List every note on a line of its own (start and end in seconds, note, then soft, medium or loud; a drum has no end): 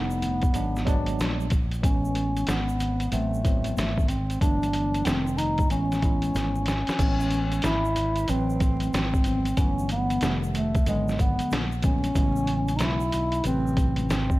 0.00 0.51 F1 medium
0.00 0.45 C3 medium
0.00 0.44 G3 medium
0.00 0.45 A3 medium
0.00 1.20 B3 medium
0.00 0.49 D#4 medium
0.11 shaker medium
0.22 closed hi-hat medium
0.22 low conga medium
0.22 shaker soft
0.42 kick medium
0.42 closed hi-hat soft
0.42 shaker soft
0.53 1.15 G#1 medium
0.53 0.81 F#3 medium
0.53 0.82 G#3 medium
0.53 0.82 B3 medium
0.53 0.83 D4 medium
0.53 closed hi-hat medium
0.53 high conga soft
0.53 shaker medium
0.76 snare soft
0.76 shaker soft
0.85 1.46 F#3 medium
0.85 1.47 G#3 medium
0.85 1.48 B3 medium
0.85 1.48 D4 loud
0.85 kick medium
0.85 closed hi-hat medium
0.85 shaker soft
1.06 closed hi-hat medium
1.06 high conga medium
1.06 shaker soft
1.19 1.80 A#1 medium
1.19 snare medium
1.19 closed hi-hat medium
1.19 shaker medium
1.41 shaker soft
1.50 kick medium
1.50 closed hi-hat medium
1.50 low conga medium
1.50 shaker soft
1.71 closed hi-hat soft
1.71 shaker soft
1.82 2.45 A1 loud
1.82 2.65 E3 medium
1.82 2.66 G#3 medium
1.82 2.66 B3 medium
1.82 2.50 C#4 medium
1.82 2.67 C#4 medium
1.82 kick loud
1.82 closed hi-hat medium
1.82 shaker medium
2.05 shaker soft
2.15 closed hi-hat medium
2.15 high conga soft
2.15 shaker soft
2.37 closed hi-hat soft
2.37 shaker soft
2.47 3.09 G#1 medium
2.47 3.12 B3 medium
2.47 snare loud
2.47 closed hi-hat medium
2.47 shaker medium
2.69 shaker medium
2.80 closed hi-hat medium
2.80 low conga medium
2.80 shaker soft
3.00 closed hi-hat soft
3.00 shaker soft
3.11 3.74 A1 loud
3.11 3.40 E3 medium
3.11 3.40 F#3 medium
3.11 3.73 A3 medium
3.11 3.40 B3 medium
3.11 3.41 C4 medium
3.11 closed hi-hat medium
3.11 high conga soft
3.11 shaker medium
3.34 shaker soft
3.44 4.05 E3 medium
3.44 4.05 F#3 medium
3.44 4.06 B3 medium
3.44 4.06 C4 medium
3.44 kick medium
3.44 closed hi-hat medium
3.44 shaker soft
3.64 closed hi-hat medium
3.64 high conga medium
3.64 shaker soft
3.76 4.38 G#1 loud
3.76 4.10 A3 medium
3.76 snare loud
3.76 closed hi-hat medium
3.76 shaker medium
3.98 kick medium
3.98 shaker soft
4.08 4.40 C4 medium
4.08 closed hi-hat medium
4.08 low conga medium
4.08 shaker soft
4.30 closed hi-hat soft
4.30 shaker soft
4.40 5.03 G1 loud
4.40 5.05 E3 medium
4.40 5.06 F#3 medium
4.40 5.06 A3 medium
4.40 5.06 B3 medium
4.40 5.07 D4 loud
4.40 kick loud
4.40 closed hi-hat medium
4.40 shaker medium
4.63 closed hi-hat soft
4.63 shaker medium
4.73 closed hi-hat medium
4.73 high conga soft
4.73 shaker soft
4.94 closed hi-hat soft
4.94 shaker soft
5.05 5.70 F1 medium
5.05 5.61 D#3 medium
5.05 5.61 G3 medium
5.05 5.62 A3 medium
5.05 5.15 B3 medium
5.05 5.39 C4 medium
5.05 snare loud
5.05 closed hi-hat medium
5.05 shaker medium
5.14 5.65 C4 medium
5.27 shaker medium
5.38 5.70 D#4 loud
5.38 closed hi-hat medium
5.38 low conga medium
5.38 shaker soft
5.58 kick medium
5.58 closed hi-hat soft
5.58 shaker soft
5.69 6.32 A1 loud
5.69 5.98 E3 medium
5.69 5.98 G#3 medium
5.69 5.99 B3 medium
5.69 6.63 C#4 loud
5.69 5.99 C#4 medium
5.69 closed hi-hat medium
5.69 shaker medium
5.92 snare soft
5.92 closed hi-hat soft
5.92 shaker soft
6.02 6.63 E3 medium
6.02 6.63 G#3 medium
6.02 6.64 B3 medium
6.02 6.64 E4 medium
6.02 kick medium
6.02 closed hi-hat medium
6.02 shaker soft
6.22 closed hi-hat medium
6.22 high conga medium
6.22 shaker soft
6.35 6.85 G#1 medium
6.35 snare medium
6.35 closed hi-hat medium
6.35 shaker medium
6.56 high conga medium
6.56 shaker soft
6.66 7.61 C#4 loud
6.66 snare medium
6.66 closed hi-hat medium
6.66 low conga medium
6.66 shaker soft
6.87 muted fretless electric bass stroke soft
6.87 snare medium
6.87 closed hi-hat soft
6.87 shaker soft
6.99 7.60 A1 medium
6.99 7.82 E3 medium
6.99 7.83 G#3 medium
6.99 7.83 B3 medium
6.99 7.09 C4 medium
6.99 kick loud
6.99 closed hi-hat medium
6.99 crash medium
6.99 shaker medium
7.08 7.87 C#4 medium
7.20 shaker soft
7.31 closed hi-hat medium
7.31 low conga medium
7.31 shaker soft
7.52 closed hi-hat soft
7.52 shaker soft
7.62 8.25 G#1 medium
7.62 8.31 E4 loud
7.62 snare loud
7.62 closed hi-hat medium
7.62 high conga medium
7.62 shaker medium
7.85 shaker medium
7.96 closed hi-hat medium
7.96 low conga medium
7.96 shaker soft
8.16 closed hi-hat soft
8.16 shaker soft
8.28 8.90 A1 loud
8.28 9.09 E3 medium
8.28 9.10 F#3 medium
8.28 8.94 C4 loud
8.28 9.11 C4 medium
8.28 9.10 B4 medium
8.28 closed hi-hat medium
8.28 shaker medium
8.50 shaker soft
8.60 kick medium
8.60 closed hi-hat medium
8.60 shaker soft
8.80 closed hi-hat medium
8.80 high conga medium
8.80 shaker soft
8.93 9.54 G#1 medium
8.93 9.60 C4 loud
8.93 snare loud
8.93 closed hi-hat medium
8.93 shaker medium
9.14 kick medium
9.14 shaker soft
9.24 9.48 E3 medium
9.24 9.49 F#3 medium
9.24 9.49 B3 medium
9.24 9.50 C4 medium
9.24 closed hi-hat medium
9.24 low conga medium
9.24 shaker soft
9.45 closed hi-hat soft
9.45 shaker medium
9.57 10.19 G1 loud
9.57 10.22 E3 medium
9.57 10.22 F#3 medium
9.57 10.22 A3 medium
9.57 10.23 B3 medium
9.57 9.90 C#4 loud
9.57 kick loud
9.57 closed hi-hat loud
9.57 shaker medium
9.79 shaker medium
9.89 10.39 B3 loud
9.89 closed hi-hat medium
9.89 low conga medium
9.89 shaker soft
10.10 closed hi-hat soft
10.10 shaker soft
10.21 10.83 F1 medium
10.21 10.78 C3 medium
10.21 10.77 D#3 medium
10.21 10.78 G3 medium
10.21 10.78 A3 medium
10.21 snare loud
10.21 closed hi-hat medium
10.21 high conga medium
10.21 shaker medium
10.43 shaker medium
10.55 10.86 A3 medium
10.55 closed hi-hat medium
10.55 low conga medium
10.55 shaker soft
10.75 kick medium
10.75 closed hi-hat soft
10.75 shaker soft
10.86 11.37 G#1 loud
10.86 11.68 D3 medium
10.86 11.68 F#3 medium
10.86 11.69 G#3 medium
10.86 11.22 G#3 loud
10.86 11.69 B3 medium
10.86 closed hi-hat medium
10.86 shaker medium
11.08 snare soft
11.08 shaker soft
11.19 11.59 B3 medium
11.19 kick loud
11.19 closed hi-hat medium
11.19 shaker soft
11.39 muted fretless electric bass stroke soft
11.39 closed hi-hat medium
11.39 high conga medium
11.39 shaker soft
11.51 12.13 A#1 medium
11.51 snare loud
11.51 closed hi-hat medium
11.51 shaker medium
11.72 shaker soft
11.82 12.06 D3 medium
11.82 12.07 F#3 medium
11.82 12.07 G#3 medium
11.82 12.08 B3 medium
11.82 12.78 C#4 loud
11.82 kick medium
11.82 closed hi-hat medium
11.82 low conga medium
11.82 shaker soft
12.04 closed hi-hat soft
12.04 shaker soft
12.14 12.80 A1 loud
12.14 12.98 C#3 medium
12.14 12.98 E3 medium
12.14 12.99 G#3 medium
12.14 12.99 B3 medium
12.14 kick loud
12.14 closed hi-hat medium
12.14 shaker medium
12.36 shaker medium
12.47 closed hi-hat medium
12.47 low conga soft
12.47 shaker soft
12.68 closed hi-hat soft
12.68 shaker soft
12.76 13.41 B1 loud
12.76 12.84 D#4 medium
12.76 closed hi-hat medium
12.76 high conga medium
12.76 shaker medium
12.81 13.46 E4 medium
12.81 snare loud
13.00 shaker medium
13.12 closed hi-hat medium
13.12 low conga medium
13.12 shaker soft
13.32 closed hi-hat soft
13.32 shaker soft
13.43 14.06 A1 loud
13.43 14.25 C3 medium
13.43 14.26 E3 medium
13.43 14.26 F#3 medium
13.43 14.06 C4 loud
13.43 14.27 B4 medium
13.43 closed hi-hat medium
13.43 shaker medium
13.67 shaker soft
13.77 kick medium
13.77 closed hi-hat medium
13.77 shaker soft
13.96 closed hi-hat medium
13.96 high conga medium
13.96 shaker soft
14.09 14.39 G#1 loud
14.09 14.39 C4 medium
14.09 snare medium
14.09 closed hi-hat medium
14.09 shaker medium
14.30 kick medium
14.30 shaker soft